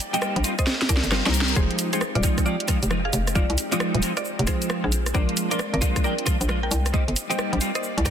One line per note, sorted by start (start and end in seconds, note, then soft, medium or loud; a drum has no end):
0.00 1.54 A#3 medium
0.00 4.88 D#4 medium
0.00 4.88 G4 loud
0.00 1.53 D5 medium
0.00 open hi-hat loud
0.00 cabasa medium
0.13 0.42 G3 medium
0.13 0.42 A#3 medium
0.13 0.42 C4 medium
0.13 0.42 D#4 medium
0.13 0.42 G4 medium
0.13 0.33 D#5 medium
0.13 0.33 G5 loud
0.13 closed hi-hat medium
0.13 cabasa soft
0.22 cross-stick loud
0.22 cabasa soft
0.36 0.43 A#1 loud
0.36 closed hi-hat medium
0.44 0.53 G3 medium
0.44 0.53 A#3 medium
0.44 0.53 C4 medium
0.44 0.53 D#4 medium
0.44 0.53 F4 loud
0.44 open hi-hat loud
0.44 cabasa medium
0.59 0.71 C5 medium
0.59 0.71 D#5 medium
0.59 kick medium
0.59 cross-stick medium
0.59 closed hi-hat medium
0.59 cabasa soft
0.67 snare medium
0.67 reverse cymbal medium
0.67 cabasa soft
0.81 snare medium
0.81 closed hi-hat medium
0.89 1.02 C2 loud
0.89 1.06 A#4 medium
0.89 1.06 D5 medium
0.89 kick loud
0.89 open hi-hat loud
0.89 cabasa medium
0.97 snare medium
1.03 1.22 G1 medium
1.03 closed hi-hat medium
1.03 cabasa soft
1.11 1.22 G3 medium
1.11 1.22 A#3 medium
1.11 1.22 C4 medium
1.11 1.22 D#4 medium
1.11 1.22 F4 medium
1.11 cross-stick loud
1.11 snare medium
1.11 cabasa soft
1.25 1.55 C2 loud
1.25 1.54 G3 medium
1.25 1.54 A#3 medium
1.25 1.54 C4 medium
1.25 1.39 D#4 medium
1.25 1.54 D#4 medium
1.25 1.54 A#4 loud
1.25 1.39 C5 medium
1.25 snare loud
1.25 closed hi-hat soft
1.34 open hi-hat loud
1.34 cabasa medium
1.41 snare loud
1.48 closed hi-hat medium
1.48 cabasa soft
1.56 1.69 F1 loud
1.56 1.90 F3 medium
1.56 1.89 G#3 medium
1.56 6.90 G#3 medium
1.56 6.89 C4 medium
1.56 1.90 C4 medium
1.56 1.90 D#4 medium
1.56 1.90 F4 medium
1.56 1.73 G#4 medium
1.56 1.73 C5 loud
1.56 kick loud
1.56 cabasa soft
1.71 closed hi-hat soft
1.79 open hi-hat loud
1.79 cabasa medium
1.92 2.01 F3 medium
1.92 2.01 G#3 medium
1.92 2.01 C4 medium
1.92 2.01 D#4 medium
1.92 2.01 F4 medium
1.92 2.00 G#4 medium
1.92 2.00 C5 medium
1.92 closed hi-hat medium
1.92 cabasa soft
2.01 cross-stick loud
2.01 cabasa soft
2.15 2.22 D#1 loud
2.15 2.28 F4 medium
2.15 2.28 D5 medium
2.15 closed hi-hat soft
2.23 2.44 F3 medium
2.23 2.44 G#3 medium
2.23 2.44 C4 medium
2.23 2.44 D#4 medium
2.23 2.44 F4 medium
2.23 kick loud
2.23 open hi-hat loud
2.23 cabasa medium
2.38 kick medium
2.38 cross-stick medium
2.38 closed hi-hat medium
2.38 cabasa soft
2.45 2.54 F3 medium
2.45 2.54 G#3 medium
2.45 2.54 C4 medium
2.45 2.54 D#4 medium
2.45 2.63 F4 medium
2.45 2.54 G4 medium
2.45 2.63 D5 loud
2.45 cabasa soft
2.60 closed hi-hat medium
2.68 2.77 F3 medium
2.68 2.77 G#3 medium
2.68 2.77 C4 medium
2.68 2.77 D#4 medium
2.68 2.77 F4 loud
2.68 kick loud
2.68 cross-stick medium
2.68 open hi-hat loud
2.68 cabasa medium
2.83 3.11 F1 medium
2.83 closed hi-hat medium
2.83 cabasa soft
2.90 2.99 F3 medium
2.90 2.99 G#3 medium
2.90 2.99 C4 medium
2.90 2.99 D#4 medium
2.90 2.99 F4 medium
2.90 cross-stick loud
2.90 cabasa soft
3.05 3.18 G#4 medium
3.05 3.18 F5 medium
3.13 3.47 F1 medium
3.13 open hi-hat loud
3.13 cabasa medium
3.27 cross-stick medium
3.27 closed hi-hat medium
3.27 cabasa soft
3.35 3.44 F3 medium
3.35 3.44 G#3 medium
3.35 3.44 C4 medium
3.35 3.44 D#4 medium
3.35 3.52 F4 medium
3.35 3.44 F4 medium
3.35 3.52 D5 medium
3.35 kick loud
3.35 cabasa soft
3.50 3.57 C2 medium
3.50 closed hi-hat soft
3.58 open hi-hat loud
3.58 cabasa medium
3.71 4.01 F3 medium
3.71 4.01 G#3 medium
3.71 4.01 C4 medium
3.71 4.01 D#4 medium
3.71 4.01 F4 medium
3.71 3.91 F4 medium
3.71 3.91 D5 loud
3.71 closed hi-hat medium
3.71 cabasa soft
3.80 cross-stick loud
3.80 cabasa soft
3.95 4.02 D#1 loud
3.95 closed hi-hat medium
4.02 4.11 F3 medium
4.02 4.11 G#3 medium
4.02 4.11 C4 medium
4.02 4.11 D#4 medium
4.02 4.11 F4 loud
4.02 open hi-hat medium
4.02 cabasa medium
4.17 4.30 F4 medium
4.17 4.30 D5 loud
4.17 cross-stick medium
4.17 closed hi-hat medium
4.17 cabasa soft
4.25 cabasa soft
4.39 4.46 F1 loud
4.39 closed hi-hat soft
4.47 4.91 F3 medium
4.47 4.91 G#3 medium
4.47 4.91 C4 medium
4.47 4.91 D#4 medium
4.47 4.91 F4 loud
4.47 4.64 G#4 medium
4.47 4.64 C5 medium
4.47 kick loud
4.47 cross-stick medium
4.47 open hi-hat loud
4.47 cabasa medium
4.62 closed hi-hat medium
4.62 cabasa soft
4.70 cross-stick loud
4.70 cabasa soft
4.84 5.13 A#1 loud
4.84 4.97 F4 medium
4.84 4.97 G#4 medium
4.92 6.92 D4 medium
4.92 6.92 F4 medium
4.92 open hi-hat medium
4.92 cabasa medium
5.06 cross-stick medium
5.06 closed hi-hat medium
5.06 cabasa soft
5.14 5.27 A#1 loud
5.14 5.48 F3 medium
5.14 5.48 G#3 medium
5.14 5.48 A#3 medium
5.14 5.48 D4 medium
5.14 5.48 F4 medium
5.14 5.31 A#4 medium
5.14 5.32 D5 loud
5.14 kick loud
5.14 cabasa soft
5.29 closed hi-hat soft
5.37 open hi-hat loud
5.37 cabasa medium
5.50 5.59 F3 medium
5.50 5.59 G#3 medium
5.50 5.59 A#3 medium
5.50 5.59 D4 medium
5.50 5.59 F4 medium
5.50 5.58 A#4 medium
5.50 5.58 D5 loud
5.50 closed hi-hat medium
5.50 cabasa soft
5.59 cross-stick loud
5.59 cabasa soft
5.74 5.81 G#1 loud
5.74 5.86 A#4 medium
5.74 5.86 D5 medium
5.74 closed hi-hat soft
5.81 6.02 F3 medium
5.81 6.02 G#3 medium
5.81 6.02 A#3 medium
5.81 6.02 D4 medium
5.81 6.02 F4 medium
5.81 kick loud
5.81 open hi-hat medium
5.81 cabasa medium
5.96 kick medium
5.96 cross-stick medium
5.96 closed hi-hat medium
5.96 cabasa soft
6.03 6.13 F3 medium
6.03 6.13 G#3 medium
6.03 6.13 A#3 medium
6.03 6.13 D4 medium
6.03 6.13 G4 medium
6.03 6.21 A#4 medium
6.03 6.21 D5 loud
6.03 cabasa soft
6.18 closed hi-hat medium
6.26 6.35 F3 medium
6.26 6.35 G#3 medium
6.26 6.35 A#3 medium
6.26 6.35 D4 medium
6.26 6.35 F4 loud
6.26 kick loud
6.26 cross-stick medium
6.26 open hi-hat loud
6.26 cabasa medium
6.41 6.70 A#1 medium
6.41 closed hi-hat medium
6.41 cabasa soft
6.48 6.57 F3 medium
6.48 6.57 G#3 medium
6.48 6.57 A#3 medium
6.48 6.57 D4 medium
6.48 6.57 F4 medium
6.48 cross-stick loud
6.48 cabasa soft
6.63 6.76 A#4 medium
6.63 6.76 G5 medium
6.71 7.05 C2 medium
6.71 open hi-hat loud
6.71 cabasa medium
6.86 cross-stick medium
6.86 closed hi-hat medium
6.86 cabasa soft
6.93 7.02 G3 medium
6.93 8.10 A#3 medium
6.93 7.02 A#3 medium
6.93 7.02 C4 medium
6.93 8.10 D#4 medium
6.93 7.02 D#4 medium
6.93 8.10 G4 loud
6.93 7.02 G4 medium
6.93 7.11 C5 medium
6.93 8.10 D5 medium
6.93 7.11 D#5 medium
6.93 kick loud
6.93 cabasa soft
7.08 7.15 G1 medium
7.08 closed hi-hat soft
7.16 open hi-hat loud
7.16 cabasa medium
7.30 7.59 G3 medium
7.30 7.59 A#3 medium
7.30 7.59 C4 medium
7.30 7.59 D#4 medium
7.30 7.59 G4 medium
7.30 7.49 C5 medium
7.30 7.49 D#5 loud
7.30 closed hi-hat medium
7.30 cabasa soft
7.39 cross-stick loud
7.39 cabasa soft
7.53 7.60 A#1 loud
7.53 closed hi-hat soft
7.60 7.69 G3 medium
7.60 7.69 A#3 medium
7.60 7.69 C4 medium
7.60 7.69 D#4 medium
7.60 7.69 F4 loud
7.60 open hi-hat medium
7.60 cabasa medium
7.75 7.88 C5 medium
7.75 7.88 D#5 medium
7.75 cross-stick medium
7.75 closed hi-hat medium
7.75 cabasa soft
7.83 cabasa soft
7.98 8.05 C2 loud
7.98 closed hi-hat medium
8.05 8.10 G3 medium
8.05 8.10 A#3 medium
8.05 8.10 C4 medium
8.05 8.10 D#4 medium
8.05 8.10 G4 loud
8.05 8.10 A#4 medium
8.05 8.10 D5 medium
8.05 kick loud
8.05 cross-stick medium
8.05 open hi-hat loud
8.05 cabasa medium